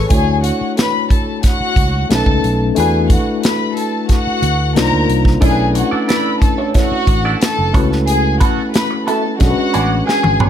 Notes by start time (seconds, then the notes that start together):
Already playing: G#4 A4 B4 C#5
0.09 D2 A3 D4 E4 F#4 G#4 G#5, kick, closed hi-hat
0.14 C#5
0.43 F#4 F#5, closed hi-hat
0.61 muted fingered electric bass stroke
0.77 B4 B5, snare, closed hi-hat
1.10 A4 A5, kick, closed hi-hat
1.43 F#4 F#5, kick, snare, closed hi-hat
1.60 muted fingered electric bass stroke
1.76 C#2, kick, closed hi-hat
2.10 B1 A3 C#4 D#4 A4 B4 A5, snare, closed hi-hat
2.26 C#2, kick
2.44 B1, closed hi-hat
2.75 E2 A3 D4 E4 F#4 G#4 G#5, closed hi-hat
2.80 B4
3.10 F#4 F#5, kick, closed hi-hat
3.27 muted fingered electric bass stroke
3.43 B4 B5, snare, closed hi-hat
3.76 A4 A5, closed hi-hat
4.09 F#4 F#5, kick, snare, closed hi-hat
4.27 muted fingered electric bass stroke
4.42 D2, closed hi-hat
4.75 C2 A#3 D4 D#4 F4 A#4 C5 A#5, snare, closed hi-hat
4.92 D2
5.09 C2, closed hi-hat
5.25 kick, snare
5.40 B1 A3 C#4 D4 E4 G#4 A4 C#5 G#5, kick, closed hi-hat
5.45 A#4
5.52 B4
5.75 F#4 F#5, muted clean electric guitar stroke, closed hi-hat
5.91 D4 E4 A4 D5, muted fingered electric bass stroke
6.08 D4 E4 A4 B4 D5 B5, snare, closed hi-hat
6.42 A4 A5, muted clean electric guitar stroke, kick, closed hi-hat
6.58 D4 E4 A4 C#5
6.74 D4 E4 F#4 A4 C#5 F#5, kick, snare, closed hi-hat
6.91 muted fingered electric bass stroke
7.07 A1, muted clean electric guitar stroke, kick, closed hi-hat
7.25 D4 E4 A4 D5
7.41 A4 A5, muted clean electric guitar stroke, snare, closed hi-hat
7.59 F#1
7.73 C#2 A3 B3 C#4 E4 F#4 A4 C#5, kick, closed hi-hat
7.77 B4
7.91 muted clean electric guitar stroke, snare
8.07 G#4 G#5, closed hi-hat
8.40 B3 F#4 A4 C#5 F#5, kick, closed hi-hat
8.58 muted fingered electric bass stroke
8.72 B4 B5, snare, closed hi-hat
8.91 muted clean electric guitar stroke
9.06 B3 F#4 A4 E5 A5, closed hi-hat
9.24 muted clean electric guitar stroke
9.38 B1 G#3 C#4 D4 F#4 F#5, muted clean electric guitar stroke, kick, snare, closed hi-hat
9.43 F#4 A4
9.50 B4
9.58 muted clean electric guitar stroke
9.74 A1 B3 D4 G#4 D5, closed hi-hat
9.91 muted clean electric guitar stroke
10.05 G#4 G#5, muted clean electric guitar stroke, snare
10.23 G#1, muted clean electric guitar stroke, high tom
10.40 A1 B3 D4 G#4 C#5, mid tom